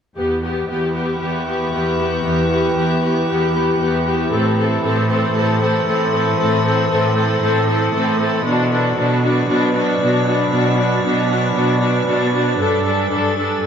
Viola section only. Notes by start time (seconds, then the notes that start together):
0.17 B3 G4
0.43 B3 G4
0.69 B3 G4
0.95 B3 G4
1.21 B3 G4
1.47 B3 G4
1.73 B3 G4
1.99 B3 G4
2.25 B3 G4
2.50 B3 G4
2.77 B3 G4
3.02 B3 G4
3.28 B3 G4
3.55 B3 G4
3.81 B3 G4
4.05 B3 G4
4.32 C4 A4
4.58 C4 A4
4.84 C4 A4
5.10 C4 A4
5.36 C4 A4
5.61 C4 A4
5.87 C4 A4
6.13 C4 A4
6.39 C4 A4
6.65 C4 A4
6.90 C4 A4
7.16 C4 A4
7.43 C4 A4
7.69 C4 A4
7.94 C4 A4
8.20 C4 A4
8.45 D4 F#4
8.72 D4 F#4
8.98 D4 F#4
9.24 D4 F#4
9.49 D4 F#4
9.75 D4 F#4
10.01 D4 F#4
10.27 D4 F#4
10.53 D4 F#4
10.78 D4 F#4
11.04 D4 F#4
11.29 D4 F#4
11.55 D4 F#4
11.82 D4 F#4
12.08 D4 F#4
12.33 D4 F#4
12.60 D4 A4
12.85 D4 A4
13.11 D4 A4
13.37 D4 A4
13.63 D4 A4